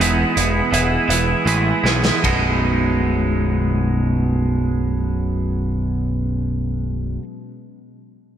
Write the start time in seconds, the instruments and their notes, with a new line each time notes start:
0.00 picked electric bass E1, clean electric guitar E2 B2 E3 G#3 B3 E4, closed hi-hat
0.35 picked electric bass E1, clean electric guitar E3 G#3 B3 E4, closed hi-hat
0.71 picked electric bass E1, clean electric guitar E3 G#3 B3 E4, closed hi-hat
1.08 picked electric bass E1, clean electric guitar E3 G#3 B3 E4, closed hi-hat
1.45 picked electric bass A1, clean electric guitar E3 G#3 B3 E4, closed hi-hat
1.83 picked electric bass B1, clean electric guitar E3 G#3 B3 E4, snare
2.05 snare
2.23 picked electric bass B0, clean electric guitar B1 F#2 B2 F#3 G#3 D#4, kick, ride